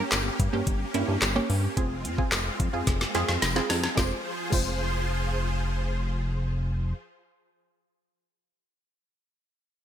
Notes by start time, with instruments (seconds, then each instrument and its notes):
Already playing: synth pluck A#3, supersaw synth A#3 C#4 G4
0.00 synth pluck C#4 A#4
0.12 analog synth bass G1, snare, clap, closed hi-hat, tambourine
0.40 analog synth bass G2, kick, closed hi-hat
0.53 analog synth bass G2, synth pluck A#3 C#4 G4
0.67 analog synth bass G1, kick, closed hi-hat
0.94 analog synth bass G2, synth pluck A#3 C#4 E4, closed hi-hat
1.08 analog synth bass G2
1.22 analog synth bass G1, snare, clap, closed hi-hat, tambourine
1.36 synth pluck A#3 C#4 G4
1.50 analog synth bass G2, open hi-hat
1.77 analog synth bass F1, supersaw synth G#3 C4 F4, synth pluck C4 F4 G#4, kick, closed hi-hat
2.05 analog synth bass F2, closed hi-hat
2.18 synth pluck C4 F4 G#4, kick
2.32 analog synth bass F1, snare, clap, closed hi-hat, tambourine
2.60 analog synth bass F2, kick, closed hi-hat
2.73 analog synth bass F2, synth pluck C4 F4 G#4
2.87 analog synth bass F1, kick, snare, closed hi-hat
3.01 snare
3.15 analog synth bass F2, synth pluck C4 F4 G#4, snare, closed hi-hat
3.29 analog synth bass F2, snare
3.42 analog synth bass F1, snare, closed hi-hat, tambourine
3.56 synth pluck C4 F4 G#4, snare
3.70 analog synth bass F2, snare, open hi-hat
3.84 snare
3.95 analog synth bass F1, supersaw synth F3 F4 G#4 C5, synth pluck G#3 C4 F4 C5, kick, snare, tambourine
4.50 analog synth bass F1, synth pluck G#3 C4 F4, kick, crash, tambourine
4.54 synth pluck C5